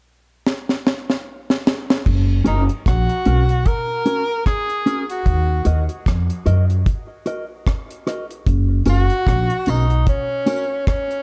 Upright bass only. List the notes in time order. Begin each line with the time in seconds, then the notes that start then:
2.07 F#1
2.46 F#1
2.86 A#1
3.26 B1
5.26 D#2
5.66 D#2
6.06 F2
6.46 F#2
8.47 F#1
8.86 F#1
9.27 A#1
9.67 B1